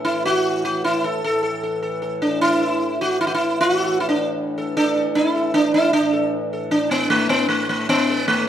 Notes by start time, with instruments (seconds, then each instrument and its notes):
Already playing: harmonium A2 E3
0.05 sitar E4
0.25 sitar F#4
0.65 sitar F#4
0.84 sitar E4
1.04 sitar A4
1.22 harmonium A2 E3, sitar A4
1.43 sitar A4
1.63 sitar A4
1.83 sitar A4
2.02 sitar A4
2.22 sitar D4
2.41 sitar E4
2.61 sitar A4
3.01 sitar F#4
3.21 sitar E4
3.27 sitar F#4
3.34 sitar E4
3.61 sitar F4
3.76 sitar F#4
3.80 sitar A4
4.00 sitar E4
4.09 sitar D4
4.58 sitar A4
4.77 sitar D4 A4
4.96 sitar A4
5.15 sitar E4 A4
5.36 sitar A4
5.54 sitar D4
5.74 sitar E4
5.93 harmonium A2 E3, sitar D4
6.13 sitar A4
6.53 sitar A4
6.71 sitar D4
6.91 sitar B3
7.10 sitar A3
7.29 sitar B3
7.49 sitar A3
7.69 sitar A3
7.89 sitar B3
8.09 sitar A4
8.28 sitar A3